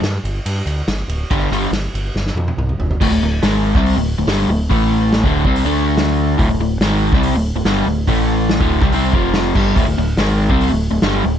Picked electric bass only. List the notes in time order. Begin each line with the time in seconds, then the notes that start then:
0.02 G2
0.24 G1
0.46 G2
0.66 D2
0.87 G1
1.08 D1
1.31 G1
1.50 G1
1.71 G1
1.94 G1
2.14 G1
2.35 F2
2.57 C2
2.78 F1
3.00 D1
3.10 D1
3.21 D1
3.42 G#1
3.74 C2
3.96 D1
4.17 D1
4.26 G1
4.48 D1
4.71 A1
5.24 D1
5.44 C2
5.64 D2
6.39 D1
6.47 D1
6.58 D1
6.79 G#1
7.12 C2
7.33 D1
7.54 D1
7.64 G1
7.86 D1
8.08 A1
8.60 D1
8.81 C2
8.92 C2
9.13 F1
9.55 G1
9.76 D1
9.86 D1
9.97 D1
10.17 G#1
10.50 C2
10.69 D1
10.90 D1
11.02 G1
11.24 D1